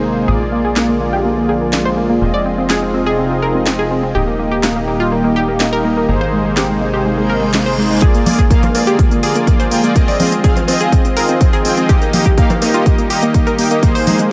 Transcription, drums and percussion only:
0.76 snare
1.73 snare
2.70 snare
3.66 snare
4.63 snare
5.60 snare
6.57 snare
7.54 snare
8.02 kick, closed hi-hat
8.14 closed hi-hat
8.26 open hi-hat, high conga
8.39 kick, closed hi-hat
8.51 kick, closed hi-hat
8.63 closed hi-hat, cowbell, high conga
8.75 open hi-hat, cowbell
8.87 closed hi-hat
8.99 kick, closed hi-hat
9.11 closed hi-hat
9.23 open hi-hat
9.35 closed hi-hat
9.47 kick, closed hi-hat
9.60 closed hi-hat
9.71 open hi-hat
9.84 closed hi-hat
9.96 kick, closed hi-hat
10.08 open hi-hat
10.20 open hi-hat, high conga
10.32 closed hi-hat
10.44 kick, closed hi-hat
10.56 closed hi-hat, cowbell, high conga
10.68 open hi-hat, cowbell
10.81 closed hi-hat
10.92 kick, closed hi-hat
11.05 closed hi-hat
11.17 open hi-hat
11.29 closed hi-hat
11.41 kick, closed hi-hat
11.53 closed hi-hat
11.65 open hi-hat
11.77 closed hi-hat
11.89 kick, closed hi-hat
12.02 closed hi-hat
12.13 open hi-hat, high conga
12.26 kick, closed hi-hat
12.38 kick, closed hi-hat
12.50 closed hi-hat, cowbell, high conga
12.62 open hi-hat, cowbell
12.74 closed hi-hat
12.86 kick, closed hi-hat
12.98 closed hi-hat
13.10 open hi-hat
13.23 closed hi-hat
13.34 kick, closed hi-hat
13.47 closed hi-hat
13.59 open hi-hat
13.71 closed hi-hat
13.83 kick, closed hi-hat
13.95 open hi-hat
14.07 open hi-hat, high conga
14.19 closed hi-hat

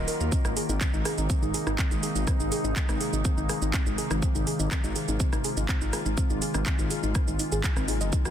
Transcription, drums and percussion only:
0.08 open hi-hat, shaker
0.20 shaker
0.32 kick, shaker
0.45 cross-stick, shaker
0.57 open hi-hat, shaker
0.69 shaker
0.81 kick, clap, shaker
0.94 shaker
1.05 cross-stick, open hi-hat, shaker
1.18 shaker
1.30 kick, shaker
1.42 shaker
1.54 open hi-hat, shaker
1.67 cross-stick, shaker
1.79 kick, clap, shaker
1.91 shaker
2.03 open hi-hat, shaker
2.16 shaker
2.27 kick, cross-stick, shaker
2.40 shaker
2.52 open hi-hat, shaker
2.64 shaker
2.76 kick, clap, shaker
2.89 cross-stick, shaker
3.01 open hi-hat, shaker
3.13 shaker
3.25 kick, shaker
3.38 shaker
3.49 cross-stick, open hi-hat, shaker
3.62 shaker
3.74 kick, clap, shaker
3.86 shaker
3.98 open hi-hat, shaker
4.11 cross-stick, shaker
4.22 kick, shaker
4.35 shaker
4.47 open hi-hat, shaker
4.60 shaker
4.71 kick, cross-stick, clap, shaker
4.84 shaker
4.96 open hi-hat, shaker
5.08 shaker
5.20 kick, shaker
5.33 cross-stick, shaker
5.44 open hi-hat, shaker
5.57 shaker
5.69 kick, clap, shaker
5.81 shaker
5.93 cross-stick, open hi-hat, shaker
6.06 shaker
6.17 kick, shaker
6.30 shaker
6.42 open hi-hat, shaker
6.54 cross-stick, shaker
6.66 kick, clap, shaker
6.79 shaker
6.91 open hi-hat, shaker
7.03 shaker
7.15 kick, cross-stick, shaker
7.28 shaker
7.39 open hi-hat, shaker
7.52 shaker
7.64 kick, clap, shaker
7.77 cross-stick, shaker
7.88 open hi-hat, shaker
8.01 shaker
8.13 kick, shaker
8.25 cross-stick, shaker

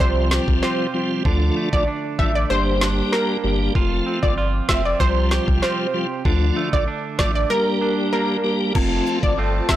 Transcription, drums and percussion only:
0.00 kick
0.31 snare
0.48 kick
0.63 snare
1.25 kick
1.73 kick
2.19 kick
2.81 snare
3.13 snare
3.75 kick
4.23 kick
4.69 kick, snare
5.00 kick
5.31 snare
5.48 kick
5.63 snare
6.25 kick
6.73 kick
7.19 kick, snare
8.75 kick, crash, high woodblock
9.07 cabasa
9.23 kick
9.69 kick, snare, cabasa, high woodblock

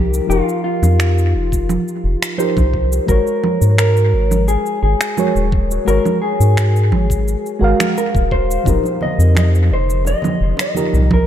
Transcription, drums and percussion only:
0.14 cabasa
0.31 cabasa
0.49 cabasa
0.83 low conga, cabasa
1.00 finger snap, cabasa
1.18 cabasa
1.52 kick, cabasa
1.69 low conga, cabasa
1.88 cabasa
2.23 finger snap, cabasa
2.40 cabasa
2.57 kick, low conga, cabasa
2.73 kick
2.92 cabasa
3.08 kick, cabasa
3.27 cabasa
3.44 low conga
3.62 cabasa
3.78 finger snap, cabasa
3.97 cabasa
4.31 low conga, cabasa
4.48 cabasa
4.66 cabasa
5.01 finger snap, cabasa
5.17 low conga, cabasa
5.36 cabasa
5.52 kick
5.71 cabasa
5.88 cabasa
6.05 low conga, cabasa
6.41 cabasa
6.57 finger snap, cabasa
6.76 cabasa
6.92 low conga
7.10 kick, cabasa
7.28 cabasa
7.46 cabasa
7.80 finger snap, low conga, cabasa
7.98 cabasa
8.15 kick, cabasa
8.31 kick
8.51 cabasa
8.65 kick, low conga, cabasa
8.83 high bongo, cabasa
9.01 high conga
9.20 cabasa
9.35 finger snap, high bongo, low conga, cabasa
9.55 cabasa
9.70 high conga
9.90 cabasa
10.05 high bongo, cabasa
10.22 high conga, low conga, cabasa
10.57 finger snap, high bongo, cabasa
10.74 high conga, cabasa
10.93 low conga, cabasa
11.11 kick, low conga

